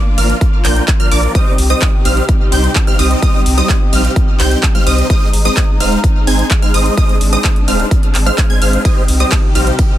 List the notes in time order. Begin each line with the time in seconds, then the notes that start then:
Already playing: A#3 D4 F4
0.18 G#1 F3 A#3 D4 A#4 F5 F6, open hi-hat
0.30 closed hi-hat
0.41 kick, closed hi-hat
0.65 A#1 F3 A#3 D4 A#4 G5 G6, clap, open hi-hat
0.76 closed hi-hat
0.88 kick, clap, closed hi-hat
1.00 F3 A#3 D4 A#4 F5 F6, closed hi-hat
1.11 A#1 F3 A#3 D4 A#4 D5 D6, open hi-hat
1.23 closed hi-hat
1.35 C3 G3 C4 D#4 G4 C5 D#5 D#6, kick, closed hi-hat
1.58 C2, open hi-hat
1.70 G3 C4 D#4 C5 D#5 D#6, closed hi-hat
1.82 kick, clap, closed hi-hat
2.05 A#1 G3 C4 D#4 C5 F5 F6, open hi-hat
2.17 closed hi-hat
2.29 kick, closed hi-hat
2.52 C2 G3 C4 D#4 C5 G5 G6, open hi-hat
2.64 closed hi-hat
2.75 kick, clap, closed hi-hat
2.87 G3 C4 D#4 C5 F5 F6, closed hi-hat
2.99 C2 G3 C4 D#4 C5 D#5 D#6, open hi-hat
3.11 closed hi-hat
3.22 G3 C4 D#4 C5 D#5 D#6, kick, closed hi-hat
3.46 C2, open hi-hat
3.57 G3 C4 D#4 C5 D#5 D#6, closed hi-hat
3.69 kick, clap, closed hi-hat
3.93 A#1 G3 C4 D#4 C5 F5 F6, open hi-hat
4.05 closed hi-hat
4.16 kick, closed hi-hat
4.40 C2 G3 C4 D#4 C5 G5 G6, clap, open hi-hat
4.51 closed hi-hat
4.63 kick, clap, closed hi-hat
4.75 G3 C4 D#4 C5 F5 F6, closed hi-hat
4.87 C2 G3 C4 D#4 C5 D#5 D#6, open hi-hat
4.98 closed hi-hat
5.10 G#3 C4 D#4 D#6, kick, closed hi-hat
5.33 G#1, open hi-hat
5.45 G#3 C4 D#4 C5 D#5 D#6, closed hi-hat
5.57 kick, clap, closed hi-hat
5.80 D#1 G#3 C4 D#4 C5 F5 F6, open hi-hat
5.92 closed hi-hat
6.04 kick, closed hi-hat
6.27 G#1 G#3 C4 D#4 C5 G#5 G#6, open hi-hat
6.39 closed hi-hat
6.51 kick, clap, closed hi-hat
6.62 G#3 C4 D#4 C5 F5 F6, closed hi-hat
6.74 G#1 G#3 C4 D#4 C5 D#5 D#6, open hi-hat
6.86 closed hi-hat
6.97 G#3 D4 D#6, kick, closed hi-hat
7.09 closed hi-hat
7.21 G#1, open hi-hat
7.33 G#3 C4 D#4 C5 D#5 D#6, closed hi-hat
7.44 kick, clap, closed hi-hat
7.56 closed hi-hat
7.68 D#1 G#3 C4 D#4 C5 F5 F6, open hi-hat
7.80 closed hi-hat
7.91 kick, closed hi-hat
8.03 closed hi-hat
8.15 G#1, clap, open hi-hat
8.26 G#3 C4 D#4 C5 F5 F6, closed hi-hat
8.38 kick, clap, closed hi-hat
8.50 G#3 C4 D#4 C5 G#5 G#6, closed hi-hat
8.62 G#1 G#3 C4 D#4 C5 F5 F6, open hi-hat
8.73 closed hi-hat
8.85 C3 G3 C4 D#4 G4 D#5 D#6, kick, closed hi-hat, ride
9.08 C2, open hi-hat
9.20 G3 C4 D#4 C5 D#5 D#6, closed hi-hat
9.32 kick, clap, closed hi-hat, ride
9.55 A#1 G3 C4 D#4 C5 F5 F6, open hi-hat
9.67 closed hi-hat
9.79 kick, closed hi-hat, ride